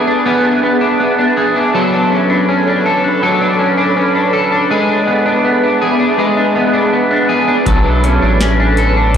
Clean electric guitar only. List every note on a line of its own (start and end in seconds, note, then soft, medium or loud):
0.00 0.25 B3 medium
0.00 0.25 G#4 medium
0.07 0.43 D4 soft
0.26 0.63 B3 medium
0.26 1.36 G#4 soft
0.44 0.80 D4 soft
0.63 0.99 B3 medium
0.81 1.18 D4 medium
1.00 2.11 B3 medium
1.19 1.55 D4 soft
1.37 1.74 G#4 medium
1.56 1.92 D4 medium
1.74 3.21 F#3 medium
1.74 2.85 A4 medium
1.93 2.29 D4 medium
2.12 2.47 C#4 medium
2.30 2.67 D4 soft
2.49 3.58 C#4 medium
2.68 3.04 D4 soft
2.86 3.22 A4 medium
3.04 3.41 D4 medium
3.23 4.70 F#3 medium
3.23 4.32 A4 medium
3.41 3.77 D4 medium
3.59 3.96 C#4 medium
3.78 4.14 D4 medium
3.97 4.78 C#4 medium
4.15 4.52 D4 soft
4.33 4.70 A4 medium
4.52 4.88 D4 medium
4.70 6.17 G#3 medium
4.70 5.80 G#4 medium
4.88 5.25 D4 medium
5.07 5.44 B3 soft
5.26 5.63 D4 medium
5.44 6.55 B3 soft
5.63 5.99 D4 soft
5.82 6.17 G#4 medium
5.99 6.36 D4 soft
6.18 7.65 G#3 medium
6.18 7.28 G#4 medium
6.36 6.73 D4 soft
6.55 6.92 B3 medium
6.73 7.10 D4 medium
6.93 8.03 B3 medium
7.11 7.47 D4 soft
7.29 7.66 G#4 medium
7.47 7.85 D4 medium
7.66 9.14 F#3 medium
7.66 8.77 A4 medium
7.85 8.22 D4 soft
8.04 8.40 C#4 soft
8.22 8.59 D4 medium
8.41 9.17 C#4 medium
8.60 8.96 D4 soft
8.78 9.15 A4 medium
8.96 9.17 D4 soft